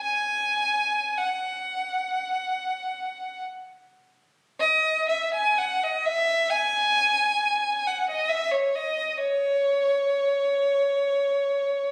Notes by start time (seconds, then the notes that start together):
0.03 G#5
1.18 F#5
4.60 D#5
5.09 E5
5.34 G#5
5.58 F#5
5.84 D#5
6.05 E5
6.50 G#5
7.87 F#5
8.10 D#5
8.29 E5
8.51 C#5
8.75 D#5
9.18 C#5